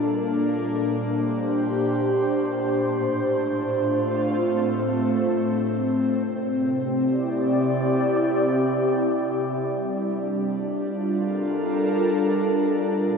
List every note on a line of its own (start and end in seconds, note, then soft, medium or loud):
0.00 2.92 A#2 medium
0.00 2.92 A#3 medium
0.00 4.19 D4 medium
0.00 0.61 F4 medium
0.00 0.94 A4 medium
0.00 0.92 A#4 medium
1.10 4.25 G4 medium
1.10 7.61 C5 medium
2.91 6.26 A2 medium
3.56 6.27 A3 medium
3.56 6.26 F4 medium
4.16 10.93 C4 medium
6.27 9.61 C3 medium
6.73 10.93 G4 medium
6.78 9.61 E4 medium
6.96 10.93 D5 medium
9.62 12.91 G3 medium
9.91 13.18 D4 medium
10.71 13.18 F4 medium
11.13 13.18 A4 medium
11.13 13.18 A#4 medium
12.93 13.18 A#2 medium